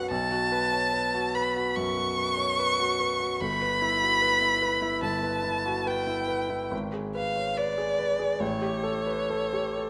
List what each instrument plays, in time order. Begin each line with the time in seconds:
Already playing: grand piano F#2 F#4 B4 C#5
0.10 grand piano B1, violin A5
0.31 grand piano F#4
0.52 grand piano B4
0.73 grand piano C#5
0.93 grand piano B4
1.14 grand piano F#4
1.35 grand piano B4, violin B5
1.56 grand piano F#4
1.75 grand piano F#2, violin C#6
1.97 grand piano F#4
2.18 grand piano B4
2.38 grand piano C#5
2.59 grand piano B4
2.79 grand piano F#4
3.00 grand piano B4
3.20 grand piano F#4
3.40 grand piano G1, violin B5
3.61 grand piano B4
3.81 grand piano E4
4.02 grand piano F#4
4.22 grand piano B4
4.42 grand piano E4
4.62 grand piano B4
4.82 grand piano E4
5.02 grand piano G1, violin A5
5.23 grand piano B4
5.44 grand piano E4
5.66 grand piano F#4
5.86 grand piano B4, violin G5
6.07 grand piano E4
6.28 grand piano B4
6.50 grand piano E4
6.71 grand piano G#1
6.93 grand piano G#4
7.15 grand piano B4, violin F5
7.36 grand piano C#5
7.57 grand piano B4, violin D5
7.78 grand piano G#4
7.99 grand piano B4
8.19 grand piano G#4
8.40 grand piano A1, violin C#5
8.62 grand piano G4
8.83 grand piano A4
9.06 grand piano B4
9.30 grand piano A4
9.53 grand piano G4
9.78 grand piano A4